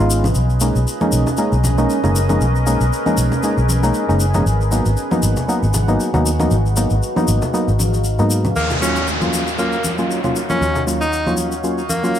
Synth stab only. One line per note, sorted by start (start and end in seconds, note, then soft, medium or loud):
0.00 0.26 G#3 loud
0.00 0.27 B3 medium
0.00 0.27 D#4 medium
0.00 0.27 F4 loud
0.61 0.80 G#3 medium
0.61 0.80 A#3 medium
0.61 0.80 C#4 medium
0.61 0.80 D#4 medium
1.01 1.29 G#3 medium
1.01 1.29 A#3 medium
1.01 1.29 C#4 medium
1.01 1.29 D#4 loud
1.38 1.57 G#3 medium
1.38 1.57 A#3 medium
1.38 1.57 C#4 medium
1.38 1.57 D#4 medium
1.78 2.00 G#3 loud
1.78 2.00 A#3 medium
1.78 2.00 C#4 medium
1.78 2.00 D#4 loud
2.03 2.20 G#3 medium
2.03 2.21 A#3 medium
2.03 2.21 C#4 medium
2.03 2.21 D#4 loud
2.29 2.46 G#3 medium
2.29 2.46 A#3 medium
2.29 2.46 C#4 medium
2.29 2.46 D#4 loud
2.66 2.85 G#3 medium
2.66 2.85 A#3 medium
2.66 2.85 C#4 medium
2.66 2.85 D#4 medium
3.06 3.34 G#3 medium
3.06 3.34 A#3 medium
3.06 3.34 C#4 medium
3.06 3.34 D#4 loud
3.43 3.62 G#3 medium
3.43 3.62 A#3 medium
3.43 3.62 C#4 medium
3.43 3.62 D#4 medium
3.83 4.05 G#3 loud
3.83 4.05 A#3 medium
3.83 4.05 C#4 medium
3.83 4.06 D#4 loud
4.09 4.26 G#3 medium
4.09 4.26 A#3 medium
4.09 4.26 C#4 medium
4.09 4.26 D#4 loud
4.34 4.44 G#3 medium
4.34 4.44 A#3 medium
4.34 4.45 C#4 medium
4.34 4.45 D#4 loud
4.71 4.90 F#3 medium
4.71 4.90 A#3 medium
4.71 4.90 B3 medium
4.71 4.90 D#4 medium
5.11 5.39 F#3 medium
5.11 5.39 A#3 medium
5.11 5.39 B3 medium
5.11 5.40 D#4 loud
5.48 5.67 F#3 medium
5.48 5.67 A#3 medium
5.48 5.67 B3 medium
5.48 5.67 D#4 medium
5.88 6.10 F#3 loud
5.88 6.10 A#3 medium
5.88 6.11 B3 medium
5.88 6.11 D#4 loud
6.14 6.31 F#3 loud
6.14 6.31 A#3 medium
6.14 6.31 B3 medium
6.14 6.31 D#4 loud
6.39 6.56 F#3 medium
6.39 6.56 A#3 medium
6.39 6.57 B3 medium
6.39 6.57 D#4 loud
6.76 6.95 F#3 medium
6.76 6.95 A#3 medium
6.76 6.95 B3 medium
6.76 6.95 D#4 medium
7.16 7.44 F#3 medium
7.16 7.45 A#3 medium
7.16 7.45 B3 medium
7.16 7.45 D#4 loud
7.53 7.72 F#3 medium
7.53 7.72 A#3 medium
7.53 7.72 B3 medium
7.53 7.72 D#4 loud
8.19 8.47 F#3 loud
8.19 8.47 A#3 medium
8.19 8.47 B3 medium
8.19 8.47 D#4 loud
8.81 9.00 F#3 medium
8.81 9.00 A#3 medium
8.81 9.00 C#4 medium
8.81 9.01 F4 medium
9.21 9.50 F#3 medium
9.21 9.50 A#3 medium
9.21 9.50 C#4 medium
9.21 9.50 F4 medium
9.58 9.77 F#3 medium
9.58 9.77 A#3 medium
9.58 9.77 C#4 medium
9.58 9.77 F4 medium
9.98 10.21 F#3 medium
9.98 10.21 A#3 medium
9.98 10.21 C#4 medium
9.98 10.21 F4 loud
10.24 10.41 F#3 medium
10.24 10.41 A#3 medium
10.24 10.41 C#4 medium
10.24 10.41 F4 loud
10.50 10.67 F#3 medium
10.50 10.67 A#3 medium
10.50 10.67 C#4 medium
10.50 10.67 F4 loud
10.87 11.05 F#3 medium
10.87 11.05 A#3 medium
10.87 11.06 C#4 medium
10.87 11.06 F4 medium
11.26 11.55 F#3 medium
11.26 11.55 A#3 medium
11.26 11.55 C#4 medium
11.26 11.55 F4 loud
11.64 11.82 F#3 medium
11.64 11.82 A#3 medium
11.64 11.82 C#4 medium
11.64 11.83 F4 medium
12.03 12.19 F#3 medium
12.03 12.19 A#3 medium
12.03 12.19 C#4 medium
12.03 12.19 F4 loud